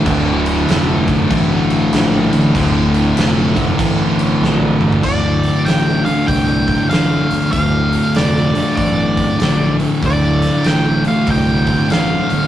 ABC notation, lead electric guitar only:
X:1
M:4/4
L:1/8
Q:"Swing" 1/4=96
K:Dm
V:1 name="Lead electric guitar"
z8 | z8 | d2 g f g2 f2 | f2 d2 d3 z |
d2 g f g2 f2 |]